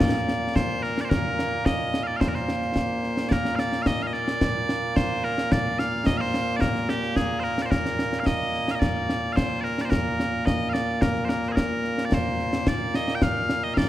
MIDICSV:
0, 0, Header, 1, 3, 480
1, 0, Start_track
1, 0, Key_signature, -2, "major"
1, 0, Tempo, 550459
1, 971, Time_signature, 4, 2, 24, 8
1, 12111, End_track
2, 0, Start_track
2, 0, Title_t, "Bagpipes"
2, 0, Program_c, 0, 109
2, 0, Note_on_c, 0, 46, 89
2, 0, Note_on_c, 0, 58, 89
2, 0, Note_on_c, 0, 74, 85
2, 483, Note_off_c, 0, 74, 0
2, 483, Note_on_c, 0, 72, 93
2, 722, Note_off_c, 0, 72, 0
2, 722, Note_on_c, 0, 70, 86
2, 880, Note_off_c, 0, 70, 0
2, 880, Note_on_c, 0, 74, 72
2, 911, Note_off_c, 0, 74, 0
2, 911, Note_on_c, 0, 72, 72
2, 957, Note_off_c, 0, 72, 0
2, 957, Note_on_c, 0, 70, 87
2, 1444, Note_off_c, 0, 70, 0
2, 1444, Note_on_c, 0, 75, 90
2, 1771, Note_off_c, 0, 75, 0
2, 1771, Note_on_c, 0, 77, 80
2, 1804, Note_off_c, 0, 77, 0
2, 1804, Note_on_c, 0, 74, 80
2, 1887, Note_off_c, 0, 74, 0
2, 1887, Note_on_c, 0, 77, 73
2, 1921, Note_off_c, 0, 77, 0
2, 1921, Note_on_c, 0, 72, 73
2, 1994, Note_off_c, 0, 72, 0
2, 1994, Note_on_c, 0, 70, 61
2, 2050, Note_off_c, 0, 70, 0
2, 2050, Note_on_c, 0, 72, 69
2, 2867, Note_off_c, 0, 72, 0
2, 2867, Note_on_c, 0, 74, 86
2, 2897, Note_off_c, 0, 74, 0
2, 2897, Note_on_c, 0, 70, 86
2, 3101, Note_off_c, 0, 70, 0
2, 3101, Note_on_c, 0, 77, 98
2, 3133, Note_off_c, 0, 77, 0
2, 3133, Note_on_c, 0, 74, 98
2, 3333, Note_off_c, 0, 74, 0
2, 3333, Note_on_c, 0, 77, 97
2, 3371, Note_off_c, 0, 77, 0
2, 3371, Note_on_c, 0, 75, 97
2, 3508, Note_off_c, 0, 75, 0
2, 3508, Note_on_c, 0, 77, 76
2, 3547, Note_off_c, 0, 77, 0
2, 3547, Note_on_c, 0, 75, 76
2, 3604, Note_off_c, 0, 75, 0
2, 3604, Note_on_c, 0, 74, 99
2, 4325, Note_off_c, 0, 74, 0
2, 4325, Note_on_c, 0, 72, 92
2, 4572, Note_off_c, 0, 72, 0
2, 4572, Note_on_c, 0, 70, 96
2, 4813, Note_off_c, 0, 70, 0
2, 4813, Note_on_c, 0, 74, 96
2, 5049, Note_off_c, 0, 74, 0
2, 5049, Note_on_c, 0, 77, 100
2, 5284, Note_off_c, 0, 77, 0
2, 5284, Note_on_c, 0, 75, 97
2, 5383, Note_off_c, 0, 75, 0
2, 5383, Note_on_c, 0, 77, 108
2, 5412, Note_off_c, 0, 77, 0
2, 5412, Note_on_c, 0, 72, 108
2, 5722, Note_off_c, 0, 72, 0
2, 5722, Note_on_c, 0, 74, 90
2, 5760, Note_off_c, 0, 74, 0
2, 5760, Note_on_c, 0, 70, 90
2, 6011, Note_off_c, 0, 70, 0
2, 6011, Note_on_c, 0, 67, 87
2, 6244, Note_off_c, 0, 67, 0
2, 6244, Note_on_c, 0, 68, 89
2, 6452, Note_off_c, 0, 68, 0
2, 6452, Note_on_c, 0, 72, 90
2, 6486, Note_off_c, 0, 72, 0
2, 6486, Note_on_c, 0, 70, 90
2, 6644, Note_off_c, 0, 70, 0
2, 6644, Note_on_c, 0, 74, 74
2, 6674, Note_off_c, 0, 74, 0
2, 6674, Note_on_c, 0, 72, 74
2, 6722, Note_off_c, 0, 72, 0
2, 6722, Note_on_c, 0, 70, 86
2, 7147, Note_off_c, 0, 70, 0
2, 7147, Note_on_c, 0, 77, 70
2, 7203, Note_off_c, 0, 77, 0
2, 7203, Note_on_c, 0, 75, 97
2, 7594, Note_off_c, 0, 75, 0
2, 7594, Note_on_c, 0, 77, 72
2, 7629, Note_off_c, 0, 77, 0
2, 7629, Note_on_c, 0, 75, 72
2, 7670, Note_off_c, 0, 75, 0
2, 7670, Note_on_c, 0, 74, 89
2, 8131, Note_off_c, 0, 74, 0
2, 8131, Note_on_c, 0, 77, 89
2, 8161, Note_off_c, 0, 77, 0
2, 8161, Note_on_c, 0, 72, 89
2, 8376, Note_off_c, 0, 72, 0
2, 8376, Note_on_c, 0, 74, 85
2, 8405, Note_off_c, 0, 74, 0
2, 8405, Note_on_c, 0, 70, 85
2, 8556, Note_off_c, 0, 70, 0
2, 8556, Note_on_c, 0, 74, 72
2, 8587, Note_off_c, 0, 74, 0
2, 8587, Note_on_c, 0, 72, 72
2, 8636, Note_off_c, 0, 72, 0
2, 8636, Note_on_c, 0, 70, 80
2, 9119, Note_off_c, 0, 70, 0
2, 9119, Note_on_c, 0, 75, 89
2, 9324, Note_off_c, 0, 75, 0
2, 9324, Note_on_c, 0, 77, 89
2, 9358, Note_off_c, 0, 77, 0
2, 9358, Note_on_c, 0, 74, 89
2, 9605, Note_off_c, 0, 74, 0
2, 9605, Note_on_c, 0, 70, 74
2, 9810, Note_off_c, 0, 70, 0
2, 9810, Note_on_c, 0, 72, 48
2, 9847, Note_off_c, 0, 72, 0
2, 9847, Note_on_c, 0, 70, 79
2, 10016, Note_off_c, 0, 70, 0
2, 10016, Note_on_c, 0, 72, 52
2, 10045, Note_off_c, 0, 72, 0
2, 10045, Note_on_c, 0, 68, 52
2, 10077, Note_off_c, 0, 68, 0
2, 10077, Note_on_c, 0, 70, 78
2, 10508, Note_off_c, 0, 70, 0
2, 10508, Note_on_c, 0, 74, 74
2, 10584, Note_off_c, 0, 74, 0
2, 10584, Note_on_c, 0, 72, 84
2, 11055, Note_off_c, 0, 72, 0
2, 11055, Note_on_c, 0, 74, 90
2, 11297, Note_off_c, 0, 74, 0
2, 11297, Note_on_c, 0, 75, 98
2, 11466, Note_off_c, 0, 75, 0
2, 11466, Note_on_c, 0, 79, 75
2, 11533, Note_off_c, 0, 79, 0
2, 11533, Note_on_c, 0, 77, 103
2, 11889, Note_off_c, 0, 77, 0
2, 11889, Note_on_c, 0, 75, 96
2, 11981, Note_off_c, 0, 75, 0
2, 11981, Note_on_c, 0, 77, 96
2, 12011, Note_off_c, 0, 77, 0
2, 12011, Note_on_c, 0, 74, 96
2, 12111, Note_off_c, 0, 46, 0
2, 12111, Note_off_c, 0, 58, 0
2, 12111, Note_off_c, 0, 74, 0
2, 12111, End_track
3, 0, Start_track
3, 0, Title_t, "Drums"
3, 4, Note_on_c, 9, 35, 63
3, 4, Note_on_c, 9, 38, 102
3, 91, Note_off_c, 9, 35, 0
3, 91, Note_off_c, 9, 38, 0
3, 248, Note_on_c, 9, 38, 72
3, 336, Note_off_c, 9, 38, 0
3, 488, Note_on_c, 9, 35, 53
3, 488, Note_on_c, 9, 38, 98
3, 575, Note_off_c, 9, 35, 0
3, 575, Note_off_c, 9, 38, 0
3, 731, Note_on_c, 9, 38, 29
3, 819, Note_off_c, 9, 38, 0
3, 851, Note_on_c, 9, 38, 71
3, 938, Note_off_c, 9, 38, 0
3, 971, Note_on_c, 9, 35, 63
3, 971, Note_on_c, 9, 38, 98
3, 1058, Note_off_c, 9, 35, 0
3, 1058, Note_off_c, 9, 38, 0
3, 1213, Note_on_c, 9, 38, 74
3, 1300, Note_off_c, 9, 38, 0
3, 1448, Note_on_c, 9, 35, 58
3, 1448, Note_on_c, 9, 38, 94
3, 1535, Note_off_c, 9, 35, 0
3, 1535, Note_off_c, 9, 38, 0
3, 1691, Note_on_c, 9, 38, 76
3, 1778, Note_off_c, 9, 38, 0
3, 1929, Note_on_c, 9, 35, 58
3, 1929, Note_on_c, 9, 38, 96
3, 2016, Note_off_c, 9, 35, 0
3, 2016, Note_off_c, 9, 38, 0
3, 2050, Note_on_c, 9, 38, 28
3, 2137, Note_off_c, 9, 38, 0
3, 2167, Note_on_c, 9, 38, 71
3, 2254, Note_off_c, 9, 38, 0
3, 2286, Note_on_c, 9, 38, 28
3, 2373, Note_off_c, 9, 38, 0
3, 2404, Note_on_c, 9, 35, 47
3, 2404, Note_on_c, 9, 38, 88
3, 2491, Note_off_c, 9, 35, 0
3, 2491, Note_off_c, 9, 38, 0
3, 2647, Note_on_c, 9, 38, 27
3, 2734, Note_off_c, 9, 38, 0
3, 2767, Note_on_c, 9, 38, 72
3, 2854, Note_off_c, 9, 38, 0
3, 2888, Note_on_c, 9, 35, 55
3, 2888, Note_on_c, 9, 38, 88
3, 2975, Note_off_c, 9, 35, 0
3, 2975, Note_off_c, 9, 38, 0
3, 3010, Note_on_c, 9, 38, 62
3, 3098, Note_off_c, 9, 38, 0
3, 3127, Note_on_c, 9, 38, 71
3, 3214, Note_off_c, 9, 38, 0
3, 3248, Note_on_c, 9, 38, 60
3, 3335, Note_off_c, 9, 38, 0
3, 3367, Note_on_c, 9, 35, 53
3, 3367, Note_on_c, 9, 38, 91
3, 3454, Note_off_c, 9, 35, 0
3, 3454, Note_off_c, 9, 38, 0
3, 3490, Note_on_c, 9, 38, 28
3, 3578, Note_off_c, 9, 38, 0
3, 3609, Note_on_c, 9, 38, 28
3, 3696, Note_off_c, 9, 38, 0
3, 3729, Note_on_c, 9, 38, 75
3, 3817, Note_off_c, 9, 38, 0
3, 3849, Note_on_c, 9, 35, 55
3, 3849, Note_on_c, 9, 38, 89
3, 3936, Note_off_c, 9, 35, 0
3, 3936, Note_off_c, 9, 38, 0
3, 4091, Note_on_c, 9, 38, 75
3, 4178, Note_off_c, 9, 38, 0
3, 4330, Note_on_c, 9, 35, 53
3, 4330, Note_on_c, 9, 38, 91
3, 4417, Note_off_c, 9, 35, 0
3, 4417, Note_off_c, 9, 38, 0
3, 4570, Note_on_c, 9, 38, 28
3, 4657, Note_off_c, 9, 38, 0
3, 4691, Note_on_c, 9, 38, 71
3, 4778, Note_off_c, 9, 38, 0
3, 4811, Note_on_c, 9, 35, 60
3, 4811, Note_on_c, 9, 38, 99
3, 4898, Note_off_c, 9, 35, 0
3, 4898, Note_off_c, 9, 38, 0
3, 5051, Note_on_c, 9, 38, 76
3, 5138, Note_off_c, 9, 38, 0
3, 5289, Note_on_c, 9, 35, 55
3, 5289, Note_on_c, 9, 38, 98
3, 5376, Note_off_c, 9, 35, 0
3, 5376, Note_off_c, 9, 38, 0
3, 5530, Note_on_c, 9, 38, 74
3, 5618, Note_off_c, 9, 38, 0
3, 5769, Note_on_c, 9, 35, 58
3, 5769, Note_on_c, 9, 38, 97
3, 5856, Note_off_c, 9, 35, 0
3, 5856, Note_off_c, 9, 38, 0
3, 5888, Note_on_c, 9, 38, 27
3, 5975, Note_off_c, 9, 38, 0
3, 6008, Note_on_c, 9, 38, 72
3, 6095, Note_off_c, 9, 38, 0
3, 6131, Note_on_c, 9, 38, 28
3, 6218, Note_off_c, 9, 38, 0
3, 6247, Note_on_c, 9, 35, 49
3, 6247, Note_on_c, 9, 38, 81
3, 6334, Note_off_c, 9, 35, 0
3, 6334, Note_off_c, 9, 38, 0
3, 6488, Note_on_c, 9, 38, 26
3, 6575, Note_off_c, 9, 38, 0
3, 6609, Note_on_c, 9, 38, 69
3, 6697, Note_off_c, 9, 38, 0
3, 6728, Note_on_c, 9, 35, 54
3, 6728, Note_on_c, 9, 38, 83
3, 6816, Note_off_c, 9, 35, 0
3, 6816, Note_off_c, 9, 38, 0
3, 6850, Note_on_c, 9, 38, 60
3, 6937, Note_off_c, 9, 38, 0
3, 6968, Note_on_c, 9, 38, 70
3, 7055, Note_off_c, 9, 38, 0
3, 7087, Note_on_c, 9, 38, 60
3, 7174, Note_off_c, 9, 38, 0
3, 7208, Note_on_c, 9, 35, 51
3, 7208, Note_on_c, 9, 38, 96
3, 7295, Note_off_c, 9, 35, 0
3, 7295, Note_off_c, 9, 38, 0
3, 7448, Note_on_c, 9, 38, 27
3, 7535, Note_off_c, 9, 38, 0
3, 7570, Note_on_c, 9, 38, 73
3, 7657, Note_off_c, 9, 38, 0
3, 7689, Note_on_c, 9, 35, 61
3, 7689, Note_on_c, 9, 38, 93
3, 7776, Note_off_c, 9, 35, 0
3, 7776, Note_off_c, 9, 38, 0
3, 7931, Note_on_c, 9, 38, 71
3, 8018, Note_off_c, 9, 38, 0
3, 8173, Note_on_c, 9, 35, 50
3, 8173, Note_on_c, 9, 38, 94
3, 8260, Note_off_c, 9, 35, 0
3, 8260, Note_off_c, 9, 38, 0
3, 8414, Note_on_c, 9, 38, 29
3, 8501, Note_off_c, 9, 38, 0
3, 8532, Note_on_c, 9, 38, 73
3, 8619, Note_off_c, 9, 38, 0
3, 8648, Note_on_c, 9, 35, 61
3, 8648, Note_on_c, 9, 38, 95
3, 8735, Note_off_c, 9, 35, 0
3, 8735, Note_off_c, 9, 38, 0
3, 8892, Note_on_c, 9, 38, 75
3, 8980, Note_off_c, 9, 38, 0
3, 9131, Note_on_c, 9, 35, 53
3, 9131, Note_on_c, 9, 38, 92
3, 9218, Note_off_c, 9, 35, 0
3, 9218, Note_off_c, 9, 38, 0
3, 9370, Note_on_c, 9, 38, 75
3, 9458, Note_off_c, 9, 38, 0
3, 9608, Note_on_c, 9, 35, 58
3, 9608, Note_on_c, 9, 38, 94
3, 9696, Note_off_c, 9, 35, 0
3, 9696, Note_off_c, 9, 38, 0
3, 9727, Note_on_c, 9, 38, 28
3, 9814, Note_off_c, 9, 38, 0
3, 9847, Note_on_c, 9, 38, 72
3, 9934, Note_off_c, 9, 38, 0
3, 9970, Note_on_c, 9, 38, 25
3, 10057, Note_off_c, 9, 38, 0
3, 10090, Note_on_c, 9, 35, 49
3, 10090, Note_on_c, 9, 38, 87
3, 10177, Note_off_c, 9, 35, 0
3, 10177, Note_off_c, 9, 38, 0
3, 10330, Note_on_c, 9, 38, 26
3, 10417, Note_off_c, 9, 38, 0
3, 10448, Note_on_c, 9, 38, 66
3, 10535, Note_off_c, 9, 38, 0
3, 10569, Note_on_c, 9, 35, 66
3, 10569, Note_on_c, 9, 38, 112
3, 10657, Note_off_c, 9, 35, 0
3, 10657, Note_off_c, 9, 38, 0
3, 10808, Note_on_c, 9, 38, 31
3, 10895, Note_off_c, 9, 38, 0
3, 10926, Note_on_c, 9, 38, 80
3, 11013, Note_off_c, 9, 38, 0
3, 11046, Note_on_c, 9, 35, 63
3, 11046, Note_on_c, 9, 38, 104
3, 11133, Note_off_c, 9, 35, 0
3, 11133, Note_off_c, 9, 38, 0
3, 11287, Note_on_c, 9, 38, 82
3, 11375, Note_off_c, 9, 38, 0
3, 11405, Note_on_c, 9, 38, 75
3, 11493, Note_off_c, 9, 38, 0
3, 11525, Note_on_c, 9, 35, 63
3, 11525, Note_on_c, 9, 38, 101
3, 11612, Note_off_c, 9, 35, 0
3, 11612, Note_off_c, 9, 38, 0
3, 11767, Note_on_c, 9, 38, 79
3, 11854, Note_off_c, 9, 38, 0
3, 12009, Note_on_c, 9, 35, 57
3, 12009, Note_on_c, 9, 38, 94
3, 12096, Note_off_c, 9, 35, 0
3, 12096, Note_off_c, 9, 38, 0
3, 12111, End_track
0, 0, End_of_file